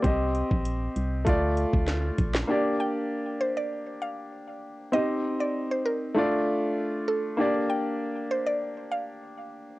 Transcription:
<<
  \new Staff \with { instrumentName = "Synth pluck" } { \time 4/4 \key g \minor \tempo 4 = 98 r1 | r8 g''16 r8. c''16 d''16 r8 f''16 r4 r16 | ees''16 r8 d''16 r16 c''16 bes'16 r4. r16 a'16 r16 | r8 g''16 r8. c''16 d''16 r8 f''16 r4 r16 | }
  \new Staff \with { instrumentName = "Grand piano" } { \time 4/4 \key g \minor <c' g' ees''>2 <a f' d''>2 | <bes d' g' d''>1 | <c' ees' g' ees''>2 <a d' f' d''>2 | <bes d' g' d''>1 | }
  \new Staff \with { instrumentName = "FM bass" } { \clef bass \time 4/4 \key g \minor c,8. bes,,8. c,8 d,8. d,8. bes,,8 | r1 | r1 | r1 | }
  \new DrumStaff \with { instrumentName = "Drums" } \drummode { \time 4/4 <hh bd>8 hh16 bd16 hh8 hh8 <hh bd>8 hh16 bd16 <hh sn>8 <hh bd>16 sn16 | r4 r4 r4 r4 | r4 r4 r4 r4 | r4 r4 r4 r4 | }
>>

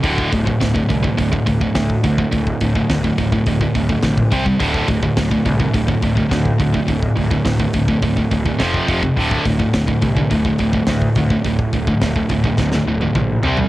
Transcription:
<<
  \new Staff \with { instrumentName = "Distorted electric guitar" } { \clef bass \time 4/4 \key d \minor \tempo 4 = 105 <d, a, d>8 <d, a,>16 <d, a,>16 <d, a,>16 <d, a,>16 <d, a,>16 <d, a,>16 <d, a,>16 <d, a,>16 <d, a,>16 <d, a,>16 <d, a,>8 <d, a,>16 <d, a,>16 | <d, a,>8 <d, a,>16 <d, a,>16 <d, a,>16 <d, a,>16 <d, a,>16 <d, a,>16 <d, a,>16 <d, a,>16 <d, a,>16 <d, a,>16 <d, a,>8 <c g c'>16 <c g>16 | <d, a, d>8 <d, a,>16 <d, a,>16 <d, a,>16 <d, a,>16 <d, a,>16 <d, a,>16 <d, a,>16 <d, a,>16 <d, a,>16 <d, a,>16 <d, a,>8 <d, a,>16 <d, a,>16 | <d, a,>8 <d, a,>16 <d, a,>16 <d, a,>16 <d, a,>16 <d, a,>16 <d, a,>16 <d, a,>16 <d, a,>16 <d, a,>16 <d, a,>16 <f, c f>8 <f, c f>16 <f, c>16 |
<d, a, d>8 <d, a,>16 <d, a,>16 <d, a,>16 <d, a,>16 <d, a,>16 <d, a,>16 <d, a,>16 <d, a,>16 <d, a,>16 <d, a,>16 <d, a,>8 <d, a,>16 <d, a,>16 | <d, a,>8 <d, a,>16 <d, a,>16 <d, a,>16 <d, a,>16 <d, a,>16 <d, a,>16 <d, a,>16 <d, a,>16 <d, a,>16 <d, a,>16 <d, a,>8 <c g c'>16 <c g>16 | }
  \new Staff \with { instrumentName = "Distorted electric guitar" } { \clef bass \time 4/4 \key d \minor <d, a, d>8 <d, a,>16 <d, a,>16 <d, a,>16 <d, a,>16 <d, a,>16 <d, a,>16 <d, a,>16 <d, a,>16 <d, a,>16 <d, a,>16 <d, a,>8 <d, a,>16 <d, a,>16 | <d, a,>8 <d, a,>16 <d, a,>16 <d, a,>16 <d, a,>16 <d, a,>16 <d, a,>16 <d, a,>16 <d, a,>16 <d, a,>16 <d, a,>16 <d, a,>8 <c g c'>16 <c g>16 | <d, a, d>8 <d, a,>16 <d, a,>16 <d, a,>16 <d, a,>16 <d, a,>16 <d, a,>16 <d, a,>16 <d, a,>16 <d, a,>16 <d, a,>16 <d, a,>8 <d, a,>16 <d, a,>16 | <d, a,>8 <d, a,>16 <d, a,>16 <d, a,>16 <d, a,>16 <d, a,>16 <d, a,>16 <d, a,>16 <d, a,>16 <d, a,>16 <d, a,>16 <f, c f>8 <f, c f>16 <f, c>16 |
<d, a, d>8 <d, a,>16 <d, a,>16 <d, a,>16 <d, a,>16 <d, a,>16 <d, a,>16 <d, a,>16 <d, a,>16 <d, a,>16 <d, a,>16 <d, a,>8 <d, a,>16 <d, a,>16 | <d, a,>8 <d, a,>16 <d, a,>16 <d, a,>16 <d, a,>16 <d, a,>16 <d, a,>16 <d, a,>16 <d, a,>16 <d, a,>16 <d, a,>16 <d, a,>8 <c g c'>16 <c g>16 | }
  \new Staff \with { instrumentName = "Picked electric bass" } { \clef bass \time 4/4 \key d \minor d,,8 d,,8 d,,8 c,8 d,,8 d,,8 d,8 d,8 | d,,8 d,,8 d,,8 d,,8 d,,8 d,,8 bes,,8 c,8 | d,,8 d,,8 d,,8 c,8 d,,8 d,,8 d,8 d,8 | d,,8 d,,8 d,,8 d,,8 d,,8 d,,8 f,,8 f,,8 |
d,,8 d,,8 d,,8 c,8 d,,8 d,,8 d,8 d,8 | d,,8 d,,8 d,,8 d,,8 d,,8 d,,8 bes,,8 c,8 | }
  \new DrumStaff \with { instrumentName = "Drums" } \drummode { \time 4/4 <hho bd>16 bd16 <hho bd>16 bd16 <hho bd sn>16 bd16 <hho bd>16 bd16 <hho bd>16 bd16 <hho bd>16 bd16 <hho bd sn>16 bd16 <hho bd>16 bd16 | <hho bd>16 bd16 <hho bd>16 bd16 <hho bd sn>16 bd16 <hho bd>16 bd16 <hho bd>16 bd16 <hho bd>16 bd16 <hho bd sn>16 bd16 <hho bd>16 bd16 | <hho bd>16 bd16 <hho bd>16 bd16 <hho bd sn>16 bd16 <hho bd>16 bd16 <hho bd>16 bd16 <hho bd>16 bd16 <hho bd sn>16 bd16 <hho bd>16 bd16 | <hho bd>16 bd16 <hho bd>16 bd16 <hho bd sn>16 bd16 <hho bd>16 bd16 <hho bd>16 bd16 <hho bd>16 bd16 <hho bd sn>16 bd16 <hho bd>16 bd16 |
<hho bd>16 bd16 <hho bd>16 bd16 <hho bd sn>16 bd16 <hho bd>16 bd16 <hho bd>16 bd16 <hho bd>16 bd16 <hho bd sn>16 bd16 <hho bd>16 bd16 | <hho bd>16 bd16 <hho bd>16 bd16 <hho bd sn>16 bd16 <hho bd>16 bd16 <bd sn>16 sn8 tommh16 <bd toml>8 tomfh16 tomfh16 | }
>>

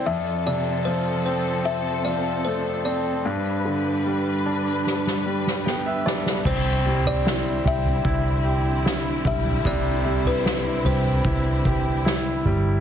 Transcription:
<<
  \new Staff \with { instrumentName = "Kalimba" } { \time 4/4 \key c \major \tempo 4 = 75 e''8 d''8 c''8 c''8 e''8 d''8 c''8 d''8~ | d''4. r2 r8 | c''8. d''8. e''2 e''8 | d''8. b'8. c''2 r8 | }
  \new Staff \with { instrumentName = "Grand piano" } { \time 4/4 \key c \major r1 | r2. g''16 e''16 d''8 | r1 | r1 | }
  \new Staff \with { instrumentName = "Grand piano" } { \time 4/4 \key c \major f,8 c8 f8 c'4 f8 a8 c'8 | g,8 d8 g8 d'4 g8 b8 d'8 | c'8 g8 e'8 g'8 e'8 g'8 e'8 g8 | c8 g8 e'8 g'8 e'8 g'8 e'8 g8 | }
  \new Staff \with { instrumentName = "String section" } { \time 4/4 \key c \major <f c' a'>1 | <g d' b'>1 | <d c' e'>1~ | <d c' e'>1 | }
  \new Staff \with { instrumentName = "Fingered electric bass" } { \clef bass \time 4/4 \key c \major r1 | r1 | c,4. c,8 c,4. b,,8 | c,4. c,8 c,4. g,,8 | }
  \new DrumStaff \with { instrumentName = "Drums" } \drummode { \time 4/4 r4 r4 r4 r4 | r4 r4 sn16 sn8 sn16 sn8 sn16 sn16 | <cymc bd tomfh>8. tomfh16 sn8 tomfh16 tomfh16 <bd tomfh>4 sn8 <bd tomfh>16 tomfh16 | <bd tomfh>8. tomfh16 sn8 tomfh16 tomfh16 <bd tomfh>8 bd8 sn8 tomfh8 | }
>>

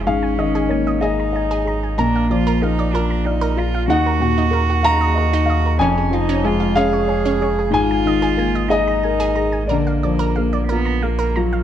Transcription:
<<
  \new Staff \with { instrumentName = "Synth pluck" } { \time 6/8 \key aes \dorian \tempo 4. = 62 aes'16 aes''16 ees''16 aes'16 aes''16 ees''16 aes'16 bes''16 aes''16 aes'16 bes''16 aes''16 | bes'16 f''16 d''16 bes'16 f''16 d''16 bes'16 bes''16 f''16 bes'16 bes''16 f''16 | ees'16 bes'16 ges'16 ees'16 bes'16 ges'16 ees'16 ees''16 bes'16 ees'16 ees''16 bes'16 | des'16 aes'16 f'16 des'16 aes'16 f'16 des'16 des''16 aes'16 des'16 des''16 aes'16 |
aes'16 aes''16 ees''16 aes'16 aes''16 ees''16 aes'16 bes''16 aes''16 aes'16 bes''16 aes''16 | bes'16 f''16 d''16 bes'16 f''16 d''16 bes'16 bes''16 f''16 bes'16 bes''16 f''16 | }
  \new Staff \with { instrumentName = "Upright piano" } { \time 6/8 \key aes \dorian << { f''8 ees''8 des''8 ees''4. | bes''2~ bes''8 r8 | ges''4. bes''4. | aes''4. f''4. |
aes''4. ees''4. | d''2~ d''8 r8 | } \\ { aes,8 ees8 bes8 aes'8 ees''8 aes'8 | bes,8 f8 bes8 f'8 d''8 f'8 | ees,8 bes,8 bes8 f''8 ees''8 f''8 | f,8 f8 aes8 aes'8 des''8 aes'8 |
aes,8 ees8 bes8 aes'8 bes'8 aes'8 | d8 f8 bes8 f'8 bes'8 f'8 | } >> }
  \new Staff \with { instrumentName = "Cello" } { \time 6/8 \key aes \dorian des'4. ees'4. | d'8 f'8 ees'8 d'8 ees'8 f'8 | ges'2. | des'8 ees'8 f'8 aes'4. |
f'4. ees'4. | bes4. ces'8 bes8 ges8 | }
  \new Staff \with { instrumentName = "Sub bass" } { \clef bass \time 6/8 \key aes \dorian aes,,2. | bes,,2. | ees,2. | f,,2. |
aes,,2. | bes,,2. | }
>>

